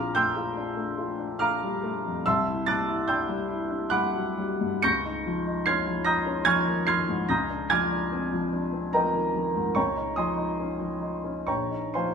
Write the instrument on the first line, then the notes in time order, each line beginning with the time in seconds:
grand piano
Already playing: A#1 F4 F5 A#5 D6 F6
0.15 A3 G5 C6 E6 G6
0.36 F4
0.57 D4
0.77 A3
0.98 F4
1.19 D4
1.39 A3 F5 A#5 D6 F6
1.63 G3
1.83 A3
2.05 F2
2.26 C2 E5 A5 C6 E6
2.47 E4
2.66 G3 A5 D6 F#6 A6
2.88 E4
3.08 D4 G5 C6 E6 G6
3.29 G3
3.49 E4
3.70 D4
3.90 G3 F#5 B5 D6 F#6
4.14 F#3
4.38 G3
4.61 G2
4.83 C#2 C#6 G6 A#6 C#7
5.05 D#4
5.26 F3
5.47 D#4
5.66 C#4 C6 F6 G#6 C7
5.87 F3
6.05 D#4 A#5 D#6 G6 A#6
6.26 C#4
6.45 F3 G#5 C#6 F6 G#6
6.67 D#3
6.87 F3 C6 F6 G#6 C7
7.08 G#2
7.29 C#2 A#5 D#6 G6 A#6
7.50 D4
7.70 F3 G#5 D6 F6 G#6
7.92 D4
8.12 C4
8.33 F3
8.53 D4
8.73 C4
8.93 F3 A#4 D#5 G5 A#5
9.14 D#3
9.34 F3
9.56 G#2
9.75 C#2 C#5 G5 A#5 C#6
9.97 D#4
10.16 F3 D#5 G#5 C6 D#6
10.37 D#4
10.60 C#4
10.80 F3
11.02 D#4
11.24 C#4
11.47 A#1 C#5 G5 A#5 C#6
11.70 D#4
11.94 F3 C5 F5 G#5 C6